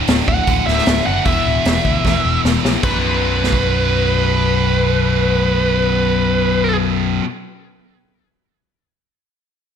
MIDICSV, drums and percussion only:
0, 0, Header, 1, 2, 480
1, 0, Start_track
1, 0, Key_signature, 2, "minor"
1, 0, Tempo, 394997
1, 1524, Time_signature, 4, 2, 24, 8
1, 11857, End_track
2, 0, Start_track
2, 0, Title_t, "Drums"
2, 92, Note_on_c, 9, 46, 46
2, 106, Note_on_c, 9, 38, 101
2, 214, Note_off_c, 9, 46, 0
2, 227, Note_off_c, 9, 38, 0
2, 338, Note_on_c, 9, 36, 82
2, 460, Note_off_c, 9, 36, 0
2, 573, Note_on_c, 9, 46, 41
2, 578, Note_on_c, 9, 36, 88
2, 694, Note_off_c, 9, 46, 0
2, 699, Note_off_c, 9, 36, 0
2, 828, Note_on_c, 9, 38, 27
2, 949, Note_off_c, 9, 38, 0
2, 949, Note_on_c, 9, 38, 28
2, 1044, Note_on_c, 9, 46, 40
2, 1058, Note_off_c, 9, 38, 0
2, 1058, Note_on_c, 9, 38, 89
2, 1166, Note_off_c, 9, 46, 0
2, 1179, Note_off_c, 9, 38, 0
2, 1523, Note_on_c, 9, 46, 41
2, 1529, Note_on_c, 9, 36, 96
2, 1645, Note_off_c, 9, 46, 0
2, 1651, Note_off_c, 9, 36, 0
2, 2008, Note_on_c, 9, 46, 46
2, 2021, Note_on_c, 9, 38, 97
2, 2129, Note_off_c, 9, 46, 0
2, 2143, Note_off_c, 9, 38, 0
2, 2248, Note_on_c, 9, 36, 72
2, 2369, Note_off_c, 9, 36, 0
2, 2487, Note_on_c, 9, 36, 90
2, 2499, Note_on_c, 9, 38, 50
2, 2609, Note_off_c, 9, 36, 0
2, 2621, Note_off_c, 9, 38, 0
2, 2979, Note_on_c, 9, 38, 68
2, 3101, Note_off_c, 9, 38, 0
2, 3220, Note_on_c, 9, 38, 71
2, 3342, Note_off_c, 9, 38, 0
2, 3441, Note_on_c, 9, 49, 78
2, 3444, Note_on_c, 9, 36, 92
2, 3562, Note_off_c, 9, 49, 0
2, 3565, Note_off_c, 9, 36, 0
2, 4179, Note_on_c, 9, 38, 47
2, 4284, Note_on_c, 9, 36, 60
2, 4300, Note_off_c, 9, 38, 0
2, 4406, Note_off_c, 9, 36, 0
2, 11857, End_track
0, 0, End_of_file